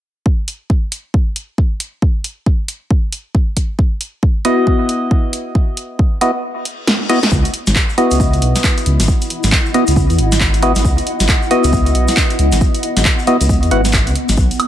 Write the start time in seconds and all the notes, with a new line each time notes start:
0.26 kick
0.48 open hi-hat
0.70 kick
0.92 open hi-hat
1.14 kick
1.36 open hi-hat
1.58 kick
1.80 open hi-hat
2.02 kick
2.24 open hi-hat
2.46 kick
2.68 open hi-hat
2.91 kick
3.12 open hi-hat
3.35 kick
3.57 kick, open hi-hat
3.79 kick
4.01 open hi-hat
4.23 kick
4.45 B3 E4 F#4 D#5, open hi-hat
4.67 kick
4.89 open hi-hat
5.11 kick
5.33 open hi-hat
5.55 kick
5.77 open hi-hat
5.99 kick
6.21 B3 E4 F#4 D#5, open hi-hat
6.43 reverse cymbal
6.65 open hi-hat
6.87 snare
7.09 B3 E4 F#4 D#5, open hi-hat
7.23 snare
7.32 C#2 B3, kick, maracas
7.45 E4, closed hi-hat, maracas
7.54 open hi-hat
7.67 G#1, snare, closed hi-hat, maracas
7.76 kick, clap, maracas
7.89 maracas
7.98 B3 E4 F#4 D#5, open hi-hat
8.11 C#2 D#5, closed hi-hat, maracas
8.20 kick, maracas
8.33 F#5, closed hi-hat, maracas
8.42 B1, open hi-hat
8.55 snare, closed hi-hat, maracas
8.64 kick, clap, maracas
8.78 closed hi-hat, maracas
8.86 C#2, open hi-hat
9.00 G#1, snare, closed hi-hat, maracas
9.08 kick, maracas
9.21 closed hi-hat, maracas
9.30 open hi-hat
9.43 G#1, snare, closed hi-hat, maracas
9.52 kick, clap, maracas
9.66 maracas
9.74 B3 E4 F#4 D#5, open hi-hat
9.87 C#2, closed hi-hat, maracas
9.96 kick, maracas
10.10 E2, closed hi-hat, maracas
10.19 G#1, open hi-hat
10.32 snare, closed hi-hat, maracas
10.40 kick, clap, maracas
10.54 closed hi-hat, maracas
10.62 B3 E4 F#4 D#5, open hi-hat
10.76 G#1, snare, closed hi-hat, maracas
10.85 C#2, kick, maracas
10.98 closed hi-hat, maracas
11.07 open hi-hat
11.20 G#1, snare, closed hi-hat, maracas
11.28 kick, clap, maracas
11.42 maracas
11.51 B3 E4 F#4 D#5, open hi-hat
11.64 C#2, closed hi-hat, maracas
11.73 kick, maracas
11.86 closed hi-hat, maracas
11.95 B1, open hi-hat
12.08 snare, closed hi-hat, maracas
12.17 kick, clap, maracas
12.30 closed hi-hat, maracas
12.39 C#2, open hi-hat
12.52 G#1, snare, closed hi-hat, maracas
12.61 kick, maracas
12.75 closed hi-hat, maracas
12.83 open hi-hat
12.97 G#1, snare, closed hi-hat, maracas
13.05 kick, clap, maracas
13.19 maracas
13.27 B3 E4 F#4 D#5, open hi-hat
13.41 C#2, closed hi-hat, maracas
13.49 kick, maracas
13.63 E2, closed hi-hat, maracas
13.71 G#1 B3 E4 F#4 F#5, open hi-hat
13.85 snare, closed hi-hat, maracas
13.92 kick, clap, maracas
14.07 C#2, closed hi-hat, maracas
14.15 open hi-hat
14.29 G#1, snare, closed hi-hat, maracas
14.37 B1, kick, maracas
14.51 D#4, closed hi-hat, maracas
14.60 open hi-hat, high woodblock